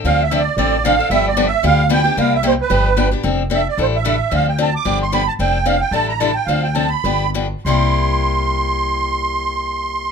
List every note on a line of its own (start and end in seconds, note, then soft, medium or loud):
0.04 0.47 D2 medium
0.04 0.22 D3 medium
0.04 0.22 F3 medium
0.04 0.22 C4 medium
0.04 0.23 D4 medium
0.04 0.23 A4 medium
0.04 0.23 F5 medium
0.23 0.40 E5 medium
0.31 0.41 D3 medium
0.31 0.41 F3 medium
0.31 0.41 C4 medium
0.31 0.41 D4 medium
0.31 0.41 A4 medium
0.39 0.56 D5 medium
0.57 0.99 A1 medium
0.57 0.75 D3 medium
0.57 0.75 F3 medium
0.57 0.76 C4 medium
0.57 0.76 D4 medium
0.57 0.76 A4 medium
0.57 0.85 D5 medium
0.85 0.94 D3 medium
0.85 0.94 F3 medium
0.85 0.95 C4 medium
0.85 0.95 D4 medium
0.85 0.95 A4 loud
0.85 1.09 F5 medium
0.99 1.11 C4 medium
0.99 1.10 D4 soft
0.99 1.10 A4 soft
1.10 1.53 G1 medium
1.10 1.29 D3 medium
1.10 1.29 F3 medium
1.10 1.29 B3 medium
1.10 1.29 D4 medium
1.10 1.29 G4 medium
1.10 1.27 E5 loud
1.28 1.45 D5 medium
1.37 1.47 D3 medium
1.37 1.47 F3 medium
1.37 1.47 B3 medium
1.37 1.47 D4 medium
1.37 1.47 G4 medium
1.47 1.65 E5 medium
1.63 2.06 D2 medium
1.63 1.81 D3 medium
1.63 1.82 F3 medium
1.63 1.82 B3 medium
1.63 1.82 D4 medium
1.63 1.82 G4 medium
1.63 1.90 F5 loud
1.89 2.00 D3 medium
1.89 2.00 F3 medium
1.89 2.00 B3 medium
1.89 2.00 D4 medium
1.89 2.00 G4 medium
1.89 2.17 G5 loud
2.04 2.17 B3 soft
2.04 2.16 D4 soft
2.04 2.16 G4 medium
2.17 2.60 C2 medium
2.17 2.35 C3 medium
2.17 2.35 G3 medium
2.17 2.35 A#3 medium
2.17 2.36 E4 medium
2.17 2.36 G4 medium
2.17 2.34 F5 medium
2.35 2.45 E5 medium
2.43 2.53 C3 medium
2.43 2.53 G3 medium
2.43 2.54 A#3 medium
2.43 2.54 E4 medium
2.43 2.54 G4 medium
2.47 2.53 C5 medium
2.61 3.10 B4 medium
2.70 3.13 G1 medium
2.70 2.88 D3 medium
2.70 2.88 F3 medium
2.70 2.88 B3 medium
2.70 2.89 D4 medium
2.70 2.89 G4 medium
2.97 3.07 D3 medium
2.97 3.07 F3 medium
2.97 3.07 B3 medium
2.97 3.07 D4 medium
2.97 3.08 G4 medium
3.11 3.23 B3 soft
3.11 3.23 D4 soft
3.11 3.23 G4 medium
3.23 3.67 F1 medium
3.23 3.42 F3 medium
3.23 3.42 C4 medium
3.23 3.42 D4 medium
3.23 3.42 A4 medium
3.50 3.60 F3 medium
3.50 3.61 C4 medium
3.50 3.61 D4 medium
3.50 3.61 A4 medium
3.54 3.67 E5 medium
3.69 3.78 D5 medium
3.78 4.20 A1 medium
3.78 3.96 D3 medium
3.78 3.96 G3 medium
3.78 3.96 D4 medium
3.78 3.96 E4 medium
3.78 3.96 A4 medium
3.82 3.87 C5 medium
3.96 4.34 E5 medium
4.05 4.14 D3 medium
4.05 4.15 G3 medium
4.05 4.15 D4 medium
4.05 4.15 E4 medium
4.05 4.15 A4 medium
4.31 4.74 D2 medium
4.31 4.49 D3 medium
4.31 4.49 F3 medium
4.31 4.49 C4 medium
4.31 4.49 D4 medium
4.31 4.50 A4 medium
4.31 4.46 F5 medium
4.48 4.59 G5 medium
4.58 4.68 D3 medium
4.58 4.68 F3 medium
4.58 4.68 C4 medium
4.58 4.68 D4 medium
4.58 4.68 A4 medium
4.58 4.74 A5 medium
4.76 4.99 D6 loud
4.85 5.28 G1 medium
4.85 5.03 D3 medium
4.85 5.03 F3 medium
4.85 5.03 B3 medium
4.85 5.03 D4 medium
4.85 5.03 G4 medium
5.03 5.12 C6 medium
5.12 5.22 D3 medium
5.12 5.22 F3 medium
5.12 5.22 B3 medium
5.12 5.22 D4 medium
5.12 5.22 G4 medium
5.12 5.27 B5 loud
5.28 5.33 A5 medium
5.39 5.82 F1 medium
5.39 5.57 F3 medium
5.39 5.57 C4 medium
5.39 5.57 D4 medium
5.39 5.57 A4 medium
5.39 5.67 G5 medium
5.65 5.75 F3 medium
5.65 5.75 C4 medium
5.65 5.75 D4 medium
5.65 5.75 A4 medium
5.65 5.81 F5 medium
5.81 5.93 G5 medium
5.91 6.36 A1 medium
5.91 6.10 D3 medium
5.91 6.11 G3 medium
5.91 6.11 D4 medium
5.91 6.11 E4 medium
5.91 6.11 A4 medium
5.91 6.07 A5 medium
6.08 6.19 A#5 medium
6.19 6.30 D3 medium
6.19 6.30 G3 medium
6.19 6.30 D4 medium
6.19 6.30 E4 medium
6.19 6.31 A4 medium
6.19 6.35 A5 medium
6.34 6.47 G5 medium
6.46 6.93 D2 medium
6.46 6.67 D3 medium
6.46 6.67 F3 medium
6.46 6.67 C4 medium
6.46 6.67 D4 medium
6.46 6.67 A4 medium
6.46 6.63 F5 medium
6.63 6.76 G5 medium
6.75 6.86 D3 medium
6.75 6.86 F3 medium
6.75 6.86 C4 medium
6.75 6.86 D4 medium
6.75 6.86 A4 medium
6.75 6.90 A5 medium
6.89 7.30 B5 medium
7.04 7.53 G1 medium
7.04 7.25 D3 medium
7.04 7.25 F3 medium
7.04 7.25 B3 medium
7.04 7.25 D4 medium
7.04 7.25 G4 medium
7.34 7.46 D3 medium
7.34 7.46 F3 medium
7.34 7.46 B3 medium
7.34 7.46 D4 medium
7.34 7.46 G4 medium
7.65 10.12 C2 medium
7.65 10.12 C3 medium
7.65 10.12 G3 medium
7.65 10.12 A#3 medium
7.65 10.12 E4 medium
7.65 10.12 G4 medium
7.65 10.12 C6 medium